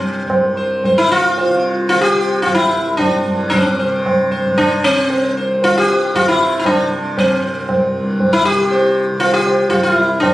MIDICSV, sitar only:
0, 0, Header, 1, 2, 480
1, 0, Start_track
1, 0, Key_signature, 0, "major"
1, 0, Tempo, 537634
1, 2675, Tempo, 527241
1, 3158, Time_signature, 7, 2, 24, 8
1, 5075, Tempo, 515464
1, 7475, Tempo, 504626
1, 9499, End_track
2, 0, Start_track
2, 0, Title_t, "Sitar"
2, 0, Program_c, 0, 104
2, 0, Note_on_c, 0, 60, 65
2, 460, Note_off_c, 0, 60, 0
2, 510, Note_on_c, 0, 72, 33
2, 738, Note_off_c, 0, 72, 0
2, 761, Note_on_c, 0, 72, 34
2, 874, Note_on_c, 0, 64, 77
2, 984, Note_off_c, 0, 72, 0
2, 992, Note_off_c, 0, 64, 0
2, 996, Note_on_c, 0, 65, 82
2, 1233, Note_on_c, 0, 72, 34
2, 1460, Note_off_c, 0, 72, 0
2, 1562, Note_off_c, 0, 65, 0
2, 1688, Note_on_c, 0, 65, 80
2, 1793, Note_off_c, 0, 65, 0
2, 1797, Note_on_c, 0, 67, 85
2, 2150, Note_off_c, 0, 67, 0
2, 2162, Note_on_c, 0, 65, 80
2, 2269, Note_off_c, 0, 65, 0
2, 2272, Note_on_c, 0, 64, 82
2, 2625, Note_off_c, 0, 64, 0
2, 2653, Note_on_c, 0, 62, 75
2, 3131, Note_on_c, 0, 60, 66
2, 3162, Note_off_c, 0, 62, 0
2, 3404, Note_on_c, 0, 72, 32
2, 3626, Note_off_c, 0, 72, 0
2, 3830, Note_off_c, 0, 60, 0
2, 3875, Note_on_c, 0, 72, 29
2, 4101, Note_off_c, 0, 72, 0
2, 4114, Note_on_c, 0, 62, 82
2, 4355, Note_on_c, 0, 60, 78
2, 4363, Note_off_c, 0, 62, 0
2, 4800, Note_off_c, 0, 60, 0
2, 4838, Note_on_c, 0, 72, 33
2, 5058, Note_off_c, 0, 72, 0
2, 5080, Note_on_c, 0, 65, 81
2, 5202, Note_off_c, 0, 65, 0
2, 5208, Note_on_c, 0, 67, 90
2, 5558, Note_off_c, 0, 67, 0
2, 5562, Note_on_c, 0, 65, 86
2, 5675, Note_off_c, 0, 65, 0
2, 5679, Note_on_c, 0, 64, 74
2, 5960, Note_off_c, 0, 64, 0
2, 5971, Note_on_c, 0, 64, 50
2, 6030, Note_off_c, 0, 64, 0
2, 6033, Note_on_c, 0, 62, 71
2, 6521, Note_on_c, 0, 60, 62
2, 6532, Note_off_c, 0, 62, 0
2, 7200, Note_off_c, 0, 60, 0
2, 7588, Note_on_c, 0, 64, 77
2, 7702, Note_off_c, 0, 64, 0
2, 7706, Note_on_c, 0, 67, 90
2, 7964, Note_on_c, 0, 72, 32
2, 8185, Note_off_c, 0, 72, 0
2, 8276, Note_off_c, 0, 67, 0
2, 8415, Note_on_c, 0, 65, 81
2, 8543, Note_off_c, 0, 65, 0
2, 8547, Note_on_c, 0, 67, 78
2, 8886, Note_off_c, 0, 67, 0
2, 8890, Note_on_c, 0, 65, 74
2, 9014, Note_off_c, 0, 65, 0
2, 9018, Note_on_c, 0, 65, 72
2, 9123, Note_off_c, 0, 65, 0
2, 9123, Note_on_c, 0, 64, 72
2, 9364, Note_off_c, 0, 64, 0
2, 9368, Note_on_c, 0, 62, 63
2, 9499, Note_off_c, 0, 62, 0
2, 9499, End_track
0, 0, End_of_file